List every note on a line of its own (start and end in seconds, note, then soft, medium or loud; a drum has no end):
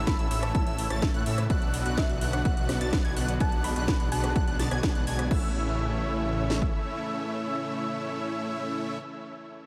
0.00 0.17 A1 loud
0.00 1.46 C#3 medium
0.00 1.46 E3 medium
0.00 0.16 A3 medium
0.00 1.46 A3 medium
0.00 0.16 C#4 medium
0.00 0.16 E4 medium
0.00 1.46 E4 medium
0.00 0.16 C#5 medium
0.00 0.16 E5 loud
0.00 0.16 E6 loud
0.07 0.24 B5 medium
0.07 kick loud
0.07 snare loud
0.07 closed hi-hat medium
0.19 0.28 A1 medium
0.19 0.28 A3 medium
0.19 0.28 C#4 medium
0.19 0.28 E4 medium
0.19 0.28 C#5 medium
0.19 0.28 E5 medium
0.19 0.28 E6 medium
0.19 closed hi-hat soft
0.31 0.52 A1 loud
0.31 0.52 A3 medium
0.31 0.52 C#4 medium
0.31 0.52 E4 medium
0.31 0.52 C#5 medium
0.31 0.52 E5 loud
0.31 0.52 E6 loud
0.31 open hi-hat medium
0.43 1.10 A5 medium
0.43 cross-stick medium
0.43 closed hi-hat medium
0.55 0.64 A1 loud
0.55 0.64 A3 medium
0.55 0.64 C#4 medium
0.55 0.64 E4 medium
0.55 0.64 C#5 medium
0.55 0.64 E5 loud
0.55 0.64 E6 loud
0.55 kick loud
0.55 closed hi-hat medium
0.67 0.88 A1 medium
0.67 0.88 A3 medium
0.67 0.88 C#4 medium
0.67 0.88 E4 medium
0.67 0.88 C#5 medium
0.67 0.88 E5 medium
0.67 0.88 E6 loud
0.67 closed hi-hat soft
0.78 open hi-hat loud
0.90 1.12 A1 loud
0.90 1.11 A3 medium
0.90 1.11 C#4 medium
0.90 1.11 E4 medium
0.90 1.11 C#5 medium
0.90 1.11 A5 loud
0.90 1.11 A6 loud
0.90 cross-stick medium
0.90 closed hi-hat medium
1.02 kick loud
1.02 snare loud
1.02 closed hi-hat medium
1.14 1.24 A2 loud
1.14 1.23 A3 medium
1.14 1.23 C#4 medium
1.14 1.23 E4 medium
1.14 1.23 C#5 medium
1.14 1.23 F#5 loud
1.14 1.23 F#6 loud
1.14 closed hi-hat soft
1.26 1.48 A2 loud
1.26 1.43 A3 medium
1.26 1.43 C#4 medium
1.26 1.43 E4 medium
1.26 1.43 C#5 medium
1.26 1.43 E5 loud
1.26 1.43 E6 loud
1.26 open hi-hat medium
1.38 cross-stick medium
1.38 closed hi-hat medium
1.50 1.83 B1 loud
1.50 5.27 D3 medium
1.50 5.27 F#3 medium
1.50 1.83 B3 medium
1.50 5.27 B3 medium
1.50 1.83 D4 medium
1.50 1.83 F#4 medium
1.50 3.39 F#4 medium
1.50 1.83 D5 medium
1.50 1.83 F#5 loud
1.50 1.83 F#6 loud
1.50 kick loud
1.50 closed hi-hat medium
1.62 closed hi-hat soft
1.74 open hi-hat loud
1.86 2.07 B1 loud
1.86 2.07 B3 medium
1.86 2.07 D4 medium
1.86 2.07 F#4 medium
1.86 2.07 D5 medium
1.86 2.07 F#5 loud
1.86 2.07 F#6 loud
1.86 closed hi-hat medium
1.98 2.31 E5 medium
1.98 kick loud
1.98 snare loud
1.98 closed hi-hat medium
2.09 2.19 B1 loud
2.09 2.19 B3 medium
2.09 2.19 D4 medium
2.09 2.19 F#4 medium
2.09 2.19 D5 medium
2.09 2.19 F#5 medium
2.09 2.19 F#6 medium
2.09 closed hi-hat soft
2.21 2.43 B1 medium
2.21 2.42 B3 medium
2.21 2.42 D4 medium
2.21 2.42 F#4 medium
2.21 2.42 D5 medium
2.21 2.42 F#5 loud
2.21 2.42 F#6 loud
2.21 open hi-hat medium
2.33 2.41 F#5 medium
2.33 cross-stick medium
2.33 closed hi-hat medium
2.45 2.55 B1 loud
2.45 2.54 B3 medium
2.45 2.54 D4 medium
2.45 2.54 F#4 medium
2.45 2.54 D5 medium
2.45 2.54 F#5 loud
2.45 2.53 F#5 medium
2.45 2.54 F#6 loud
2.45 kick loud
2.45 closed hi-hat medium
2.57 2.78 B1 medium
2.57 2.78 B3 medium
2.57 2.78 D4 medium
2.57 2.78 F#4 medium
2.57 2.78 D5 medium
2.57 2.78 F#5 medium
2.57 2.78 F#6 loud
2.57 closed hi-hat soft
2.69 cross-stick medium
2.69 snare medium
2.69 open hi-hat loud
2.81 3.02 B1 loud
2.81 3.02 B3 medium
2.81 3.02 D4 medium
2.81 3.02 F#4 medium
2.81 3.02 D5 medium
2.81 3.02 A5 loud
2.81 3.02 A6 loud
2.81 closed hi-hat medium
2.93 kick loud
2.93 snare loud
2.93 closed hi-hat medium
3.05 3.14 B1 loud
3.05 3.14 B3 medium
3.05 3.14 D4 medium
3.05 3.14 F#4 medium
3.05 3.14 D5 medium
3.05 3.14 G#5 loud
3.05 3.14 G#6 loud
3.05 closed hi-hat soft
3.17 3.38 B1 loud
3.17 3.34 B3 medium
3.17 3.34 D4 medium
3.17 3.34 F#4 medium
3.17 3.34 D5 medium
3.17 3.34 F#5 loud
3.17 3.34 F#6 medium
3.17 open hi-hat medium
3.28 closed hi-hat medium
3.40 3.74 B1 medium
3.40 5.29 G#3 medium
3.40 3.73 B3 medium
3.40 3.73 D4 medium
3.40 3.73 F#4 medium
3.40 3.73 D5 medium
3.40 3.73 F#5 loud
3.40 3.58 A5 medium
3.40 3.73 F#6 loud
3.40 kick loud
3.40 closed hi-hat medium
3.52 closed hi-hat soft
3.64 4.09 B5 medium
3.64 open hi-hat loud
3.76 3.98 B1 medium
3.76 3.97 B3 medium
3.76 3.97 D4 medium
3.76 3.97 F#4 medium
3.76 3.97 D5 medium
3.76 3.97 F#5 medium
3.76 3.97 F#6 loud
3.76 closed hi-hat medium
3.88 kick loud
3.88 snare loud
3.88 closed hi-hat medium
4.00 4.09 B1 loud
4.00 4.09 B3 medium
4.00 4.09 D4 medium
4.00 4.09 F#4 medium
4.00 4.09 D5 medium
4.00 4.09 F#5 medium
4.00 4.09 F#6 medium
4.00 closed hi-hat soft
4.12 4.33 B1 loud
4.12 4.33 B3 medium
4.12 4.33 D4 medium
4.12 4.33 F#4 medium
4.12 4.33 D5 medium
4.12 4.33 F#5 loud
4.12 4.48 A5 loud
4.12 4.33 F#6 loud
4.12 open hi-hat medium
4.24 cross-stick medium
4.24 closed hi-hat medium
4.36 4.45 B1 loud
4.36 4.45 B3 medium
4.36 4.45 D4 medium
4.36 4.45 F#4 medium
4.36 4.45 D5 medium
4.36 4.45 F#5 loud
4.36 4.45 F#6 loud
4.36 kick loud
4.36 closed hi-hat medium
4.48 4.57 B1 loud
4.48 4.57 B3 medium
4.48 4.57 D4 medium
4.48 4.57 F#4 medium
4.48 4.57 D5 medium
4.48 4.57 F#5 medium
4.48 4.57 F#6 loud
4.48 closed hi-hat soft
4.59 4.69 B1 medium
4.59 4.69 B3 loud
4.59 4.69 D4 medium
4.59 4.69 F#4 medium
4.59 4.69 D5 medium
4.59 4.69 A5 loud
4.59 4.69 A6 loud
4.59 snare medium
4.59 open hi-hat loud
4.71 4.81 B1 loud
4.71 4.80 B3 medium
4.71 4.80 D4 medium
4.71 4.80 F#4 medium
4.71 4.80 D5 medium
4.71 4.80 G#5 loud
4.71 4.80 G#6 loud
4.71 cross-stick medium
4.71 closed hi-hat medium
4.83 4.93 B1 medium
4.83 4.92 B3 medium
4.83 4.92 D4 medium
4.83 4.92 F#4 medium
4.83 4.92 D5 medium
4.83 4.92 G#5 medium
4.83 4.92 G#6 loud
4.83 kick loud
4.83 snare loud
4.83 closed hi-hat medium
4.95 5.05 B1 loud
4.95 5.04 B3 medium
4.95 5.04 D4 medium
4.95 5.04 F#4 medium
4.95 5.04 D5 medium
4.95 5.04 F#5 loud
4.95 5.04 F#6 loud
4.95 closed hi-hat soft
5.07 5.28 B1 loud
5.07 5.28 B3 medium
5.07 5.28 D4 medium
5.07 5.28 F#4 medium
5.07 5.28 D5 medium
5.07 5.28 G#5 loud
5.07 5.28 G#6 medium
5.07 open hi-hat medium
5.19 cross-stick medium
5.19 closed hi-hat medium
5.31 6.70 A1 medium
5.31 8.98 C#3 medium
5.31 8.98 E3 medium
5.31 8.98 A3 medium
5.31 8.98 C#4 medium
5.31 8.98 E4 medium
5.31 8.98 C#5 medium
5.31 8.98 E5 medium
5.31 8.98 E6 medium
5.31 kick loud
5.31 crash medium
6.50 snare medium
6.62 kick medium